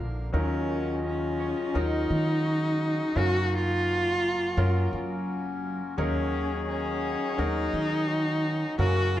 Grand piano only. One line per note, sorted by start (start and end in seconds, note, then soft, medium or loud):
0.00 0.30 A#1 medium
0.00 0.30 A#2 medium
0.00 0.36 F3 medium
0.00 0.35 A#3 medium
0.00 0.35 D4 medium
0.00 0.34 A#4 medium
0.33 3.12 D#2 medium
0.33 3.12 D#3 medium
0.33 1.24 F#3 medium
0.33 1.25 C#4 medium
0.33 1.25 D#4 medium
0.33 1.25 A#4 medium
1.74 2.66 F#3 medium
1.74 2.66 C#4 medium
1.74 2.66 D#4 medium
1.74 2.66 A#4 medium
3.16 5.94 F#1 medium
3.16 5.94 F#2 medium
3.16 4.07 F#3 medium
3.16 4.07 C#4 medium
3.16 4.07 A#4 medium
3.16 4.07 F5 medium
4.57 5.48 F#3 medium
4.57 5.48 C#4 medium
4.57 5.48 F4 medium
4.57 5.48 A#4 medium
5.98 8.75 D#2 medium
5.98 8.75 D#3 medium
5.98 6.88 F#3 medium
5.98 6.88 C#4 medium
5.98 6.89 D#4 medium
5.98 6.89 A#4 medium
7.38 8.28 F#3 medium
7.38 8.28 C#4 medium
7.38 8.29 D#4 medium
7.38 8.29 A#4 medium
8.79 9.20 F#1 medium
8.79 9.20 F#2 medium
8.79 9.20 F#3 medium
8.79 9.20 C#4 medium
8.79 9.20 A#4 medium
8.79 9.20 F5 medium